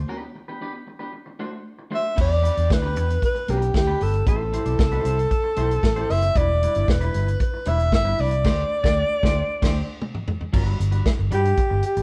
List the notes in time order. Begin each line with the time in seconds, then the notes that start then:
0.08 B3 D4 G4 B4
0.22 muted clean electric guitar stroke
0.35 muted clean electric guitar stroke
0.48 B3 D4 G4 B4
0.61 B3 D4 G4 B4
0.74 muted clean electric guitar stroke
0.87 muted clean electric guitar stroke
0.99 B3 D4 G4 B4
1.13 muted clean electric guitar stroke
1.26 muted clean electric guitar stroke
1.39 A3 D4 F#4 C5
1.52 muted clean electric guitar stroke
1.79 muted clean electric guitar stroke
1.91 A3 D4 F#4 C5 E5
2.04 muted clean electric guitar stroke
2.16 E2 B3 D4 G4 B4, kick, crash
2.21 D5
2.30 muted clean electric guitar stroke
2.42 B3 D4 G4 B4, closed hi-hat
2.56 E2 B3 D4 G4 D5, closed hi-hat
2.69 D2 B4, muted clean electric guitar stroke, kick, snare
2.82 B3 D4 G4 B4
2.95 E2 B3 D4 G4 B4, closed hi-hat
3.09 muted clean electric guitar stroke, closed hi-hat
3.22 B4, kick, closed hi-hat
3.35 muted clean electric guitar stroke, closed hi-hat
3.48 B1 B3 D4 G4 B4, closed hi-hat
3.61 muted clean electric guitar stroke, closed hi-hat
3.74 D2 G4, muted clean electric guitar stroke, kick, snare
3.87 B3 D4 G4 B4
4.00 G1 B3 D4 G4 A4 B4, open hi-hat
4.14 muted clean electric guitar stroke, closed hi-hat
4.26 A1 C4 E4 G4 A4 C5, kick, closed hi-hat
4.40 muted clean electric guitar stroke
4.53 C4 E4 G4 C5, closed hi-hat
4.66 B1 C4 E4 G4 D5, closed hi-hat
4.79 C2, muted clean electric guitar stroke, kick, snare
4.92 C4 E4 G4 C5, closed hi-hat
5.05 C2 C4 E4 G4 C5, closed hi-hat
5.19 muted clean electric guitar stroke, closed hi-hat
5.31 kick, closed hi-hat
5.44 muted clean electric guitar stroke
5.57 B1 C4 E4 G4 C5, closed hi-hat
5.70 muted clean electric guitar stroke, closed hi-hat
5.83 A1, muted clean electric guitar stroke, kick, snare
5.96 C4 E4 G4 C5, closed hi-hat
6.09 F#1 C4 E4 G4 C5 E5, open hi-hat
6.22 muted clean electric guitar stroke, closed hi-hat
6.35 E1 G3 D4 E4 B4 D5, kick, closed hi-hat
6.50 muted clean electric guitar stroke
6.62 G3 D4 E4 B4, closed hi-hat
6.75 G1 G3 D4 E4 D5, closed hi-hat
6.88 E1 B4, muted clean electric guitar stroke, kick, snare
7.01 G3 D4 E4 B4, closed hi-hat
7.14 G1 G3 D4 E4 B4, closed hi-hat
7.28 muted clean electric guitar stroke, closed hi-hat
7.40 B4, kick, closed hi-hat
7.54 muted clean electric guitar stroke
7.66 E1 G3 D4 E4 B4 E5, closed hi-hat
7.80 muted clean electric guitar stroke, closed hi-hat
7.92 G1 E5, muted clean electric guitar stroke, kick, snare
8.05 G3 D4 E4 B4
8.18 C2 G3 D4 E4 B4 D5, open hi-hat
8.31 muted clean electric guitar stroke, closed hi-hat
8.44 D2 A3 D4 G4 C5, kick, snare, crash
8.84 D2 A3 D4 G4 D5, kick, snare
9.23 D2 A3 D4 G4 C5, kick, snare
9.62 D2 A3 D4 G4 C5, kick, snare, crash
10.02 mid tom
10.15 mid tom
10.28 floor tom
10.41 floor tom
10.53 G1 G3 D4 F#4 B4, kick, crash
10.66 closed hi-hat
10.79 G1, muted clean electric guitar stroke, closed hi-hat
10.91 G3 D4 F#4 B4, closed hi-hat
11.06 kick, snare
11.18 G1, muted clean electric guitar stroke
11.31 G2 G3 D4 F#4 G4 B4, closed hi-hat
11.44 muted clean electric guitar stroke, closed hi-hat
11.57 muted clean electric guitar stroke, kick, closed hi-hat
11.70 G1, muted clean electric guitar stroke
11.82 G4, closed hi-hat
11.96 A1, muted clean electric guitar stroke, closed hi-hat